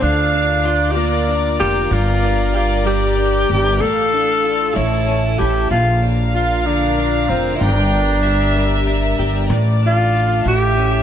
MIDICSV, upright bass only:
0, 0, Header, 1, 2, 480
1, 0, Start_track
1, 0, Tempo, 632911
1, 13, Time_signature, 6, 3, 24, 8
1, 8363, End_track
2, 0, Start_track
2, 0, Title_t, "Upright bass"
2, 0, Program_c, 0, 32
2, 15, Note_on_c, 0, 38, 93
2, 1183, Note_off_c, 0, 38, 0
2, 1216, Note_on_c, 0, 29, 75
2, 1440, Note_off_c, 0, 29, 0
2, 1448, Note_on_c, 0, 31, 101
2, 2620, Note_off_c, 0, 31, 0
2, 2651, Note_on_c, 0, 31, 84
2, 2877, Note_off_c, 0, 31, 0
2, 2891, Note_on_c, 0, 33, 92
2, 3581, Note_off_c, 0, 33, 0
2, 3609, Note_on_c, 0, 33, 100
2, 4061, Note_off_c, 0, 33, 0
2, 4094, Note_on_c, 0, 33, 84
2, 4318, Note_off_c, 0, 33, 0
2, 4326, Note_on_c, 0, 34, 100
2, 5498, Note_off_c, 0, 34, 0
2, 5531, Note_on_c, 0, 29, 72
2, 5756, Note_off_c, 0, 29, 0
2, 5771, Note_on_c, 0, 31, 93
2, 6939, Note_off_c, 0, 31, 0
2, 6966, Note_on_c, 0, 31, 82
2, 7193, Note_off_c, 0, 31, 0
2, 7203, Note_on_c, 0, 33, 114
2, 7896, Note_off_c, 0, 33, 0
2, 7926, Note_on_c, 0, 33, 99
2, 8363, Note_off_c, 0, 33, 0
2, 8363, End_track
0, 0, End_of_file